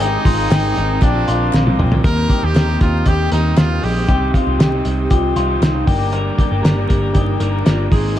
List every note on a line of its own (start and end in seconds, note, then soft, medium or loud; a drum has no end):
0.00 0.16 G#1 loud
0.00 0.38 G#3 medium
0.00 0.39 C4 medium
0.00 0.49 C4 medium
0.00 0.99 C4 medium
0.00 0.38 D#4 medium
0.00 0.99 D#4 medium
0.00 1.05 D#4 medium
0.00 0.25 G4 loud
0.00 1.00 G#4 medium
0.00 0.37 A#4 medium
0.00 1.00 A#4 medium
0.00 hi-hat pedal medium
0.00 open hi-hat loud
0.25 0.46 G#1 loud
0.25 0.50 F4 medium
0.25 kick medium
0.25 hi-hat pedal medium
0.25 open hi-hat medium
0.38 0.74 G#3 medium
0.38 0.75 C4 medium
0.38 0.76 D#4 medium
0.38 0.76 A#4 medium
0.50 0.72 G#1 loud
0.50 1.03 C4 medium
0.50 0.98 G4 medium
0.50 snare loud
0.50 clap medium
0.50 hi-hat pedal medium
0.50 open hi-hat medium
0.76 0.98 G#1 loud
0.76 1.01 G#3 medium
0.76 1.02 C4 medium
0.76 1.02 D#4 medium
0.76 1.03 A#4 medium
0.76 hi-hat pedal medium
0.76 open hi-hat medium
1.01 1.23 A#1 loud
1.01 1.15 A#2 medium
1.01 1.15 D3 medium
1.01 1.15 F3 medium
1.01 1.14 A#3 medium
1.01 2.02 C4 medium
1.01 1.14 C4 medium
1.01 2.02 D4 medium
1.01 1.54 D4 loud
1.01 1.54 D4 medium
1.01 2.02 F4 medium
1.01 1.13 F4 medium
1.01 1.27 G4 medium
1.01 2.03 A#4 medium
1.01 kick medium
1.01 clap medium
1.01 hi-hat pedal medium
1.01 open hi-hat medium
1.15 1.66 A#2 medium
1.15 1.66 D3 medium
1.15 1.66 F3 medium
1.15 1.67 A#3 medium
1.15 1.66 C4 medium
1.15 1.64 F4 medium
1.28 1.49 A#1 loud
1.28 1.79 F4 medium
1.28 hi-hat pedal medium
1.28 open hi-hat medium
1.53 1.75 A#1 loud
1.53 2.00 C4 medium
1.53 snare medium
1.53 clap medium
1.66 2.04 F3 medium
1.66 2.03 A#3 medium
1.66 2.04 C4 medium
1.66 2.04 F4 medium
1.66 high tom medium
1.79 2.00 A#1 loud
1.79 2.04 G4 medium
1.79 mid tom loud
1.92 floor tom loud
2.03 2.25 D#2 loud
2.03 2.42 D#3 medium
2.03 2.42 G3 medium
2.03 4.14 A#3 medium
2.03 2.43 A#3 medium
2.03 4.04 C4 medium
2.03 2.42 C4 medium
2.03 4.04 D#4 medium
2.03 2.41 G4 medium
2.03 4.05 G4 medium
2.03 2.29 A#4 loud
2.03 2.46 A#4 loud
2.03 kick loud
2.03 closed hi-hat medium
2.30 2.55 G4 medium
2.30 kick medium
2.30 closed hi-hat medium
2.42 2.53 D#2 medium
2.42 2.68 A#3 soft
2.42 2.67 C4 soft
2.42 2.66 G4 medium
2.42 2.81 G4 medium
2.55 2.76 D#2 medium
2.55 2.80 A#4 medium
2.55 snare loud
2.55 clap medium
2.55 closed hi-hat medium
2.68 3.31 A#3 soft
2.68 3.32 C4 soft
2.68 3.33 G4 medium
2.81 3.02 D#2 medium
2.81 3.09 F4 medium
2.81 3.06 A#4 medium
2.81 kick loud
2.81 closed hi-hat medium
3.06 3.27 D#2 loud
3.06 3.31 G4 medium
3.06 3.33 G4 loud
3.06 kick medium
3.06 closed hi-hat medium
3.31 3.53 D#2 medium
3.31 3.55 G3 medium
3.31 3.56 A#3 medium
3.31 3.57 C4 medium
3.31 3.60 D#4 medium
3.31 3.58 G4 medium
3.31 3.56 A#4 medium
3.31 closed hi-hat medium
3.57 3.78 D#2 loud
3.57 3.81 G3 medium
3.57 3.82 A#3 medium
3.57 3.83 C4 medium
3.57 3.86 F4 medium
3.57 3.84 G4 medium
3.57 3.82 A#4 medium
3.57 snare loud
3.57 clap medium
3.57 closed hi-hat medium
3.82 4.04 A#1 medium
3.82 4.08 G3 medium
3.82 4.08 A#3 medium
3.82 4.07 C4 medium
3.82 4.35 G4 medium
3.82 4.08 G4 medium
3.82 4.08 G#4 medium
3.82 open hi-hat medium
4.07 4.30 C2 loud
4.07 4.47 C3 medium
4.07 4.47 D#3 medium
4.07 5.83 C4 medium
4.07 4.61 C4 loud
4.07 4.47 C4 medium
4.07 5.84 D#4 medium
4.07 4.46 D#4 medium
4.07 4.33 G4 loud
4.07 4.45 G4 loud
4.07 5.85 G4 medium
4.07 kick loud
4.07 closed hi-hat medium
4.34 4.59 F4 medium
4.34 kick medium
4.34 closed hi-hat medium
4.46 4.57 C2 medium
4.46 4.73 C4 soft
4.46 4.72 D#4 medium
4.46 4.71 G4 medium
4.59 4.80 C2 medium
4.59 5.12 G4 loud
4.59 5.08 G4 medium
4.59 snare loud
4.59 clap medium
4.59 closed hi-hat medium
4.72 5.36 C4 medium
4.72 5.36 D#4 medium
4.72 5.38 G4 medium
4.85 5.06 C2 loud
4.85 closed hi-hat medium
5.10 5.32 C2 medium
5.10 5.63 F4 loud
5.10 5.36 G4 medium
5.10 kick medium
5.10 closed hi-hat medium
5.36 5.57 C2 medium
5.36 5.61 D#3 medium
5.36 5.61 C4 medium
5.36 5.62 D#4 medium
5.36 5.84 F4 medium
5.36 5.63 G4 medium
5.36 closed hi-hat medium
5.62 5.83 C2 loud
5.62 5.87 D#3 medium
5.62 5.87 C4 medium
5.62 5.88 D#4 medium
5.62 5.88 G4 medium
5.62 snare medium
5.62 clap medium
5.62 closed hi-hat medium
5.86 6.29 G1 medium
5.86 6.12 G3 medium
5.86 7.87 A#3 medium
5.86 6.12 A#3 medium
5.86 7.88 D4 medium
5.86 6.61 D4 medium
5.86 6.13 D4 medium
5.86 6.12 G4 medium
5.86 7.89 G4 medium
5.86 6.12 A#4 medium
5.86 kick loud
5.86 open hi-hat medium
6.12 6.51 G2 medium
6.12 6.51 D3 loud
6.12 6.51 G3 medium
6.12 6.51 A#3 medium
6.12 6.51 D4 medium
6.12 6.38 A#4 loud
6.12 6.51 A#4 loud
6.12 closed hi-hat medium
6.38 6.63 G4 medium
6.38 kick loud
6.38 closed hi-hat medium
6.51 6.62 G1 medium
6.51 6.78 G3 medium
6.51 6.77 A#3 medium
6.51 6.77 D4 medium
6.51 6.76 A#4 medium
6.63 6.85 G1 medium
6.63 7.12 G4 medium
6.63 6.87 A#4 medium
6.63 snare loud
6.63 clap medium
6.63 closed hi-hat medium
6.77 7.40 G3 soft
6.77 7.41 A#3 medium
6.77 7.41 D4 medium
6.77 7.43 A#4 medium
6.89 7.11 G1 medium
6.89 7.14 A#4 medium
6.89 kick medium
6.89 closed hi-hat medium
7.14 7.36 G1 medium
7.14 7.42 D#4 loud
7.14 7.40 G4 medium
7.14 kick medium
7.14 closed hi-hat medium
7.40 7.62 G1 loud
7.40 7.65 G3 medium
7.40 7.66 A#3 medium
7.40 7.67 D4 medium
7.40 7.65 A#4 medium
7.40 7.67 A#4 medium
7.40 closed hi-hat medium
7.66 7.88 G1 medium
7.66 7.91 G3 medium
7.66 7.92 A#3 medium
7.66 7.93 D4 medium
7.66 7.90 F4 medium
7.66 7.92 A#4 medium
7.66 7.93 A#4 medium
7.66 snare loud
7.66 clap medium
7.66 closed hi-hat medium
7.90 8.19 G#1 loud
7.90 8.16 G#3 medium
7.90 8.19 A#3 medium
7.90 8.19 C4 medium
7.90 8.17 C4 medium
7.90 8.19 D#4 medium
7.90 8.17 D#4 medium
7.90 8.17 G#4 medium
7.90 8.19 G#4 medium
7.90 8.18 A#4 medium
7.90 kick loud
7.90 open hi-hat medium